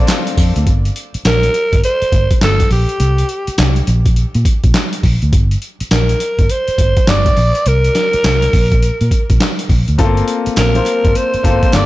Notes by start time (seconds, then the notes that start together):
Already playing: D3 A#3 C4 D4 F4 A4
0.08 snare, clap, closed hi-hat, tambourine
0.27 closed hi-hat
0.37 F2, kick, open hi-hat, tambourine
0.56 D2, closed hi-hat
0.67 G1, kick, closed hi-hat
0.85 closed hi-hat
0.96 closed hi-hat
1.14 muted fingered electric bass stroke, closed hi-hat
1.25 A#1 A#4, snare, clap, closed hi-hat
1.43 closed hi-hat
1.54 closed hi-hat
1.73 G1, kick, closed hi-hat
1.84 C5, closed hi-hat
2.02 muted fingered electric bass stroke, closed hi-hat
2.12 G1, kick, closed hi-hat
2.31 kick, closed hi-hat
2.41 G1 A4, snare, clap, closed hi-hat
2.60 kick, closed hi-hat
2.71 A#1 G4, open hi-hat
2.89 closed hi-hat
3.00 C2, closed hi-hat
3.18 closed hi-hat
3.29 closed hi-hat
3.47 muted fingered electric bass stroke, closed hi-hat
3.58 C2, snare, clap, closed hi-hat
3.76 closed hi-hat
3.87 A#1, closed hi-hat
4.06 kick, closed hi-hat
4.16 closed hi-hat
4.35 A#2, closed hi-hat
4.45 kick, closed hi-hat
4.64 A#1, kick, closed hi-hat
4.74 snare, clap, closed hi-hat
4.93 closed hi-hat
5.03 A#1, kick, open hi-hat
5.22 D2, closed hi-hat
5.33 G1, kick, closed hi-hat
5.51 closed hi-hat
5.62 closed hi-hat
5.80 muted fingered electric bass stroke, closed hi-hat
5.91 A#1 A#4, snare, clap, closed hi-hat
6.09 closed hi-hat
6.20 closed hi-hat
6.39 G1, kick, closed hi-hat
6.50 C5, closed hi-hat
6.68 muted fingered electric bass stroke, closed hi-hat
6.78 G1, kick, closed hi-hat
6.97 kick, closed hi-hat
7.07 G1 D5, snare, clap, closed hi-hat
7.26 kick, closed hi-hat
7.37 A#1, open hi-hat
7.55 closed hi-hat
7.66 C2 A#4, closed hi-hat
7.84 closed hi-hat
7.95 snare, closed hi-hat
8.13 muted fingered electric bass stroke, closed hi-hat
8.24 C2, snare, clap, closed hi-hat
8.42 closed hi-hat
8.53 A#1, kick, open hi-hat
8.72 kick, closed hi-hat
8.83 closed hi-hat
9.01 A#2, closed hi-hat
9.11 kick, closed hi-hat
9.30 A#1, kick, closed hi-hat
9.40 snare, clap, closed hi-hat
9.59 closed hi-hat
9.69 A#1, kick, open hi-hat
9.88 D2, closed hi-hat
9.98 G1 A3 C4 F4 A4, kick, closed hi-hat
10.05 A#3
10.17 closed hi-hat
10.28 closed hi-hat
10.46 muted fingered electric bass stroke, closed hi-hat
10.57 A#1 A#4, snare, clap, closed hi-hat
10.75 A#3 C4 F4 C5, closed hi-hat
10.86 clap, closed hi-hat
11.05 G1, kick, closed hi-hat
11.15 C5, closed hi-hat
11.34 muted fingered electric bass stroke, closed hi-hat
11.44 G1 A#3 C4 F4 A4, kick, closed hi-hat
11.63 kick, closed hi-hat
11.73 G1 D5, snare, clap, closed hi-hat